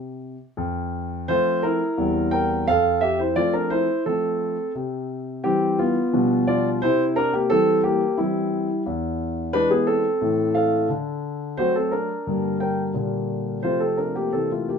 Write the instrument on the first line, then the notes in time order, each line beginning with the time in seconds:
grand piano
Already playing: C3
0.57 F2
1.28 F3 A3 C4 F4 C5
1.63 E4 A#4
1.98 E2 G3 C4
2.31 A#4 G5
2.68 F2 A4 F5
3.01 G4 E5
3.19 E4 C5
3.36 F3 A3 C4 F4 D5
3.53 D4 A#4
3.70 E4 C5
4.06 F3 A3 C4 A4
4.75 C3
5.44 E3 G3 C4 G4
5.79 B3 F4
6.13 B2 F3 G3 D4
6.47 F4 D5
6.82 C3 E4 C5
7.16 D4 A#4
7.33 A#3 G4
7.50 E3 G3 C4 A4
7.83 A#3 G4
8.18 E3 G3 C4 E4
8.86 E2
9.53 E3 G#3 D4 B4
9.71 B3 G#4
9.87 C4 A4
10.21 A2 E3 A3 C4
10.55 A4 F5
10.89 D3
11.57 F#3 A3 C4 F#4 C5
11.75 C4 A4
11.91 D4 A#4
12.27 G2 D3 G3 A#3
12.60 A#4 G5
12.94 A#2 D3 G3 A#3
13.63 C3 F3 A3 F4 C5
13.80 C4 A4
13.97 D4 A#4
14.15 A#3 G4
14.33 C3 E3 A#3 C4 A4
14.52 A3 F4
14.69 A#3 G4